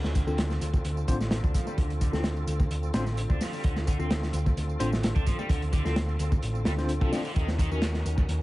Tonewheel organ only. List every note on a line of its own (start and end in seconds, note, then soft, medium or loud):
0.00 7.32 D3 medium
0.00 7.32 C4 medium
0.00 7.32 F4 medium
0.00 7.32 A4 medium
7.36 8.42 D#3 medium
7.36 8.42 C#4 medium
7.36 8.42 F#4 medium
7.36 8.42 A#4 medium